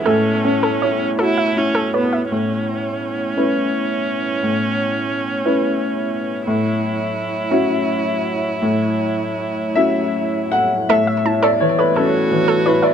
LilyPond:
<<
  \new Staff \with { instrumentName = "Synth pluck" } { \time 6/8 \key a \major \tempo 4. = 56 a'16 r8 a'16 cis''16 r16 a'16 e''16 r16 a'16 cis''16 e''16 | r2. | r2. | r2. |
r2. | a'16 e''16 a''16 a'16 r16 cis''16 a'16 r8 a'16 cis''16 e''16 | }
  \new Staff \with { instrumentName = "Analog synth pad" } { \time 6/8 \key a \major <b e' cis''>2. | <b e' cis''>2.~ | <b e' cis''>2. | <fis e' cis''>2.~ |
<fis e' cis''>2. | <b e' cis''>2. | }
  \new Staff \with { instrumentName = "Upright piano" } { \time 6/8 \key a \major << { a'2~ a'8 r8 | r2. | r2. | r2. |
r4. e''4 fis''8 | e''8. d''16 cis''16 b'16 a'4 b'16 d''16 | } \\ { a,8 cis'8 e'8 fis'8 e'8 b'8 | a,4. <cis' e' b'>4. | a,4. <cis' e' b'>4. | a,4. <cis' e' fis'>4. |
a,4. <cis' e' fis'>4. | a,8 e'8 e8 cis'8 e8 e'8 | } >> }
  \new Staff \with { instrumentName = "Viola" } { \time 6/8 \key a \major cis'4. e'8 cis'8 b8 | cis'2.~ | cis'2. | e'2.~ |
e'2~ e'8 r8 | r4. fis'4. | }
>>